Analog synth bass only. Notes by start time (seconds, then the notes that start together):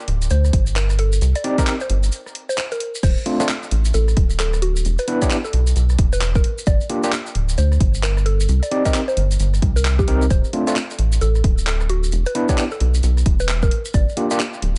0.08 D1
0.30 D2
0.53 G1
1.21 C2
1.90 G1
3.03 D1
3.71 A1
3.94 A1
4.17 D1
4.85 E1
5.53 B1
5.76 B1
5.99 E1
6.67 G1
7.35 D1
7.58 D2
7.81 G1
8.49 C2
9.17 G1
9.40 G1
9.62 C2
10.30 D1
10.99 A1
11.22 A1
11.44 D1
12.12 E1
12.80 B1
13.03 B1
13.26 E1
13.94 G1
14.62 D1